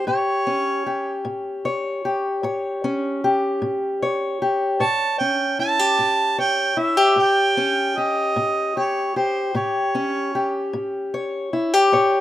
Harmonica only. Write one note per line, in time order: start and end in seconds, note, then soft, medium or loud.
0.07 1.22 C#5 medium
4.80 5.18 A5 loud
5.18 5.56 G5 medium
5.60 6.35 A5 loud
6.39 6.80 G5 medium
6.79 7.18 E5 medium
7.19 7.99 G5 medium
7.98 8.79 D#5 medium
8.77 9.16 C#5 medium
9.16 9.53 C5 medium
9.56 10.70 C#5 medium